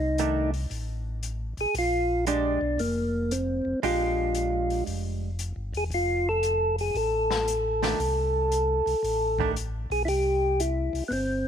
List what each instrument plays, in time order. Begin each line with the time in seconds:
Already playing: tonewheel organ C2 D#4
0.18 hollow-body jazz guitar D#3 A3 D4, closed hi-hat
0.54 open hi-hat
0.70 tonewheel organ A1, open hi-hat
1.23 closed hi-hat
1.57 tonewheel organ A1 G#4, open hi-hat
1.74 tonewheel organ A#1, open hi-hat
1.78 tonewheel organ F4
2.27 hollow-body jazz guitar G#3 D4 G4, tonewheel organ D4, closed hi-hat
2.61 tonewheel organ B1
2.78 tonewheel organ F1 A#3, open hi-hat
3.31 tonewheel organ C4, closed hi-hat
3.65 tonewheel organ F1
3.82 tonewheel organ A#1 F4, hollow-body jazz guitar G#3 D4 G4, open hi-hat
4.35 closed hi-hat
4.70 open hi-hat
4.87 tonewheel organ F1, open hi-hat
5.39 closed hi-hat
5.56 tonewheel organ G1
5.74 tonewheel organ E1 G#4, open hi-hat
5.91 tonewheel organ F1 F4, open hi-hat
6.29 tonewheel organ A4
6.43 closed hi-hat
6.78 tonewheel organ G#4, open hi-hat
6.95 tonewheel organ A1 A4, open hi-hat
7.31 snare
7.48 closed hi-hat
7.83 hollow-body jazz guitar D#3 A3 D4, snare, open hi-hat
7.99 tonewheel organ C2, open hi-hat
8.52 closed hi-hat
8.86 tonewheel organ C2, open hi-hat
9.03 tonewheel organ A1, open hi-hat
9.39 hollow-body jazz guitar D#3 A3 D4, kick
9.56 closed hi-hat
9.90 tonewheel organ B1 G#4, open hi-hat
10.05 tonewheel organ C2 E4 G4, open hi-hat
10.60 tonewheel organ E4, closed hi-hat
10.93 tonewheel organ C2, open hi-hat
11.08 tonewheel organ G1 B3, open hi-hat
11.13 tonewheel organ C4